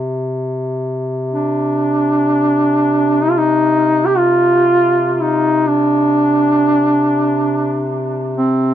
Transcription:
duduk
Already playing: C3
1.32 D4
3.23 D#4
3.30 F4
3.38 D#4
4.06 G4
4.17 F4
5.13 F4
5.22 D#4
5.67 D4
8.37 C4

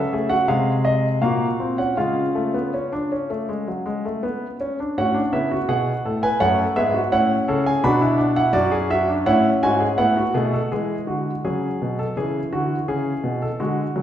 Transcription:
grand piano
Already playing: C#3 A4 E5
0.13 A3 G#4
0.29 F#4 F#5
0.48 C3 G#3 G#4 F5
0.85 D#5
1.22 A#2 A#3 F#4 F5
1.60 C4
1.78 C#4 F#5
1.97 C#3 G#3 F4 F5
2.35 A3
2.54 B3
2.74 C#4
2.92 D4
3.12 C#4
3.30 A3
3.49 G#3
3.68 F#3
3.86 G#3
4.05 A3
4.23 B3
4.61 C#4
4.80 D4
4.98 A2 C#4 F#4 F#5
5.14 D4
5.33 C#3 B3 E4 E5
5.51 F#4
5.69 B2 G#4 F#5
6.05 A2 A4
6.23 B4 G#5
6.40 F#2 A3 C#5 F#5
6.59 A4
6.76 G#2 B3 G#4 E5
6.94 F#4
7.12 A2 C#4 E4 F#5
7.48 C#3 A4
7.66 G#4 G#5
7.84 B2 D4 F#4 B5
8.01 E4
8.18 D4
8.36 E4 F#5
8.53 F#2 F#4 D5
8.72 G#4
8.90 F#4 E5
9.09 D4
9.26 A2 C#4 E4 F#5
9.63 G#2 F#4 G#5
9.80 G#4
9.98 A2 B3 E4 F#5
10.17 F#4
10.34 B2 A3 G#4
10.53 A4
10.72 E3 G#3 G#4
11.07 D3 F#4
11.45 C#3 F#3 G#4
11.82 B2
11.99 A4
12.17 C#3 E3 G#4
12.53 D3 F#4
12.88 C#3 G#4
13.24 B2
13.42 A4
13.60 D3 G#3 F#4
13.95 C#3 F#3

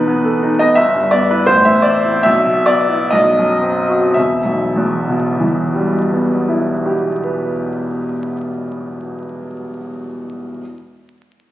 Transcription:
grand piano
Already playing: E2 B2 B3 D#4 B4
0.08 B3
0.24 A4
0.43 D#4
0.59 B3 D#5
0.75 G1 E5
0.95 G2
1.11 B3 D5
1.31 E4 B4
1.46 A1 C5
1.65 E2 E5
1.82 C4 D5
2.04 E4
2.23 B1 E5
2.45 B2
2.66 B3 D5
2.89 E4
3.11 B1 D#5
3.38 F#2
3.61 C4
3.89 F#4
4.14 E1 E5
4.45 B1
4.76 E2
5.08 B2
5.40 E3
5.74 G3
6.12 B3
6.49 E4
6.86 G4
7.24 B4

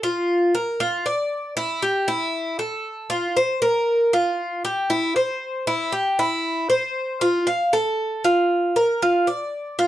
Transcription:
cuban tres
0.03 F4
0.55 A#4
0.80 F4
1.06 D5
1.57 E4
1.82 G4
2.08 E4
2.59 A4
3.10 F4
3.37 C5
3.62 A#4
4.13 F4
4.65 G4
4.90 E4
5.16 C5
5.67 E4
5.92 G4
6.19 E4
6.70 C5
7.21 F4
7.47 F5
7.73 A4
8.24 F4
8.76 A#4
9.02 F4
9.27 D5
9.79 F4

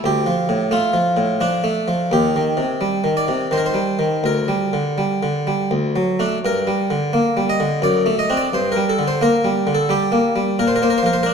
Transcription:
harpsichord
0.04 D2 G4
0.26 F3
0.49 A2
0.71 A3 F4
0.93 F3
1.17 A2
1.41 F3 D4
1.64 A3
1.88 F3
2.12 D#2 G4
2.36 D#3
2.57 C3
2.81 G3
3.04 D#3
3.17 D5
3.28 C3
3.51 D#3 C5
3.57 A#4
3.66 C5
3.74 G3
3.99 D#3
4.24 D2 A#4
4.48 G3
4.73 D3
4.98 G3
5.23 D3
5.47 G3
5.71 D2
5.96 F#3
6.19 A3 D4
6.45 G2 A#4
6.67 G3
6.90 D3
7.13 A#3
7.37 G3
7.50 D#5
7.60 D3
7.82 F#2 D5
8.06 A3
8.19 D#5
8.30 C4 D4
8.37 D5
8.53 G2 C5
8.72 A#4
8.76 G3
8.89 A4
8.99 D3
9.08 C5
9.21 A#3 A#4
9.44 G3
9.67 D3
9.75 A4
9.89 G3 G4
10.12 A#3
10.36 G3
10.59 A#2 A#4
10.68 C5
10.76 A#4
10.82 A#3 C5
10.90 A#4
10.98 C5
11.03 F3 A#4
11.13 C5
11.23 D4 A#4

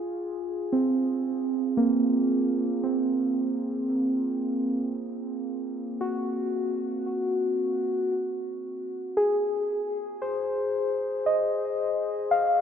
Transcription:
synth keys
Already playing: F4
0.72 C4
1.77 A#3
2.84 C4
6.01 F#4
9.17 G#4
10.22 C5
11.26 D#5
12.31 F5

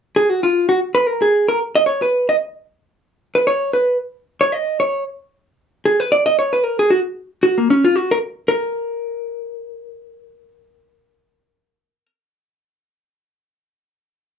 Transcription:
hollow-body jazz guitar
0.16 G#4
0.30 F#4
0.43 F4
0.69 F#4
0.95 B4
1.08 A#4
1.22 G#4
1.48 A#4
1.75 D#5
1.86 C#5
2.02 B4
2.29 D#5
3.35 B4
3.47 C#5
3.73 B4
4.41 C#5
4.52 D#5
4.80 C#5
5.85 G#4
6.00 B4
6.12 D5
6.26 D#5
6.39 C#5
6.53 B4
6.63 A#4
6.79 G#4
6.90 F#4
7.43 F#4
7.58 A#3
7.70 C#4
7.84 F4
7.96 F#4
8.11 A#4
8.48 A#4

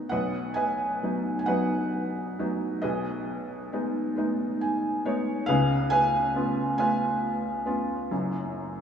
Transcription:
felt piano
Already playing: G#2 D#3 B3 D#4
0.09 B1 B2 B4 D#5 F#5
0.54 B4 D#5 G#5
1.03 F#3 B3 D#4
1.39 G#5
1.46 F#3 B3 D#4 B4 D#5 F#5
2.39 F#3 B3 D#4
2.82 B1 B2 G#4 B4 D#5
3.73 G#3 B3 D#4
4.16 G#3 B3 D#4
4.61 G#5
5.05 G#3 B3 D#4 C#5
5.46 C#2 C#3 G#4 B4 F5
5.90 B4 F5 G#5
6.36 B3 C#4 F4
6.78 B3 C#4 F4 B4 F5 G#5
7.66 B3 C#4 F4
8.11 F#1 F#2

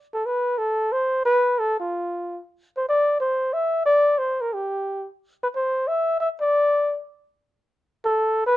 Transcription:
flugelhorn
0.14 A4
0.26 B4
0.58 A4
0.92 C5
1.25 B4
1.59 A4
1.80 F4
2.77 C5
2.89 D5
3.20 C5
3.54 E5
3.86 D5
4.18 C5
4.41 A#4
4.53 G4
5.43 B4
5.55 C5
5.88 E5
6.20 E5
6.41 D5
8.05 A4
8.46 B4

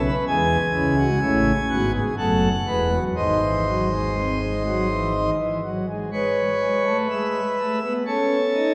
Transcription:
pipe organ
Already playing: B1 E5
0.05 B4
0.28 E2 E3 G#3 G#4 G#5
0.74 C#2 C#3 E4
0.98 F#4
1.22 A1 A2 C#4 E4
1.70 G#1 G#2 B3 F#4
1.94 G#4
2.18 F#1 F#2 A3 A4 F#5
2.67 E1 E2 G#3 B4
2.92 F#3
3.16 G#1 G#2 D#3 C5 D#5
3.42 E3
3.67 F#3
3.93 G#3
4.17 C4
4.41 G#3
4.66 F#3
4.91 E3
5.16 D#3
5.39 E3
5.64 F#3
5.88 G#3
6.13 G#3 B4 C#5
6.61 G#3
6.85 A3
7.10 G#3 E5
7.59 A3
7.82 B3
8.06 C#4 A4 C#5
8.54 D#4

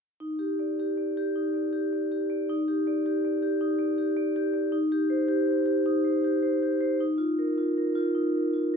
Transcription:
vibraphone
0.20 D#4
0.39 G4
0.59 D5
0.79 G4
0.97 D5
1.17 G4
1.36 D#4
1.54 D5
1.73 G4
1.93 D5
2.12 G4
2.30 D5
2.50 D#4
2.68 G4
2.87 D5
3.06 G4
3.25 D5
3.42 G4
3.61 D#4
3.79 D5
3.98 G4
4.17 D5
4.36 G4
4.54 D5
4.72 D#4
4.92 G4
5.10 C5
5.28 G4
5.48 C5
5.66 G4
5.86 D#4
6.04 C5
6.24 G4
6.43 C5
6.63 G4
6.81 C5
7.00 D#4
7.18 F4
7.39 A#4
7.58 F4
7.78 A#4
7.95 F4
8.15 D#4
8.35 A#4
8.53 F4

